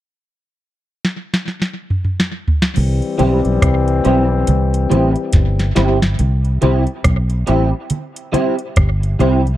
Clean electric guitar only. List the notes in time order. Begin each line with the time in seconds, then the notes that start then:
3.18 G3 C4 E4 G4
4.04 G3 C4 E4 G4
4.90 G3 C4 E4 G4
5.75 G3 C4 E4 G4
6.61 G3 C4 E4 G4
7.47 G3 C4 E4 G4
8.32 G3 C4 E4 G4
9.19 G3 C4 E4 G4